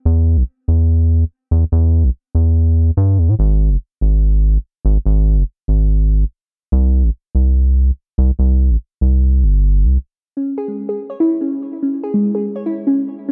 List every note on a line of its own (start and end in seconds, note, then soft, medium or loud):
0.05 0.38 E2 medium
0.37 0.43 B1 medium
0.68 1.24 E2 medium
1.51 1.65 E2 medium
1.72 2.05 E2 loud
2.03 2.10 B1 medium
2.35 2.91 E2 medium
2.97 3.19 G2 medium
3.18 3.30 E2 medium
3.28 3.35 A2 medium
3.39 3.72 G#1 loud
3.70 3.77 F#1 medium
4.01 4.58 G#1 medium
4.85 4.98 G#1 medium
5.06 5.38 G#1 medium
5.37 5.43 F#1 medium
5.68 6.24 G#1 medium
6.72 7.05 C2 loud
7.03 7.10 A1 medium
7.35 7.91 C2 medium
8.18 8.31 C2 medium
8.39 8.72 C2 medium
8.70 8.77 A1 medium
9.01 9.45 C2 medium
9.43 9.86 G1 medium
9.85 9.98 C2 medium
10.37 10.46 C#4 medium
10.58 10.67 G#4 loud
10.68 10.77 G#3 medium
10.89 10.98 G#4 medium
11.10 11.15 C#5 medium
11.20 11.29 E4 loud
11.41 11.51 C#4 medium
11.83 11.92 C#4 medium
12.03 12.12 G#4 loud
12.14 12.23 G#3 medium
12.35 12.44 G#4 medium
12.56 12.61 C#5 medium
12.66 12.75 E4 loud
12.87 12.97 C#4 medium
13.29 13.32 C#4 medium